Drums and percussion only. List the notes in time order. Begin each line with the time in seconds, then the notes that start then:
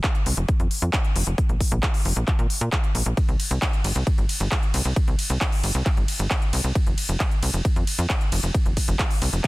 0.04 kick, clap, closed hi-hat
0.15 closed hi-hat
0.26 open hi-hat
0.37 closed hi-hat
0.48 kick, closed hi-hat
0.60 closed hi-hat
0.71 open hi-hat
0.82 closed hi-hat
0.93 kick, clap, closed hi-hat
1.04 closed hi-hat
1.16 open hi-hat
1.27 closed hi-hat
1.38 kick, closed hi-hat
1.49 closed hi-hat
1.61 kick, open hi-hat
1.72 closed hi-hat
1.83 kick, clap, closed hi-hat
1.94 open hi-hat
2.05 open hi-hat
2.16 closed hi-hat
2.28 kick, clap, closed hi-hat
2.39 closed hi-hat
2.50 open hi-hat
2.61 closed hi-hat
2.72 kick, clap, closed hi-hat
2.84 closed hi-hat
2.95 open hi-hat
3.06 closed hi-hat
3.17 kick, closed hi-hat, ride
3.29 closed hi-hat
3.40 open hi-hat, ride
3.51 closed hi-hat
3.62 kick, clap, closed hi-hat, ride
3.73 closed hi-hat
3.84 open hi-hat, ride
3.96 closed hi-hat
4.07 kick, closed hi-hat, ride
4.18 closed hi-hat
4.29 open hi-hat, ride
4.40 closed hi-hat
4.52 kick, clap, closed hi-hat, ride
4.63 closed hi-hat
4.74 open hi-hat, ride
4.85 closed hi-hat
4.96 kick, closed hi-hat, ride
5.08 closed hi-hat
5.19 open hi-hat, ride
5.30 closed hi-hat
5.41 kick, clap, closed hi-hat
5.52 open hi-hat
5.64 open hi-hat, ride
5.75 closed hi-hat
5.86 kick, clap, closed hi-hat, ride
5.97 closed hi-hat
6.08 open hi-hat, ride
6.19 closed hi-hat
6.31 kick, clap, closed hi-hat, ride
6.42 closed hi-hat
6.53 open hi-hat, ride
6.64 closed hi-hat
6.75 kick, closed hi-hat, ride
6.87 closed hi-hat
6.98 open hi-hat, ride
7.09 closed hi-hat
7.20 kick, clap, closed hi-hat, ride
7.31 closed hi-hat
7.43 open hi-hat, ride
7.54 closed hi-hat
7.65 kick, closed hi-hat, ride
7.76 closed hi-hat
7.87 open hi-hat, ride
7.99 closed hi-hat
8.10 kick, clap, closed hi-hat, ride
8.21 closed hi-hat
8.32 open hi-hat, ride
8.43 closed hi-hat
8.54 kick, closed hi-hat, ride
8.66 closed hi-hat
8.77 kick, open hi-hat, ride
8.88 closed hi-hat
8.99 kick, clap, closed hi-hat, ride
9.10 open hi-hat
9.22 open hi-hat, ride
9.33 closed hi-hat
9.44 kick, clap, closed hi-hat, ride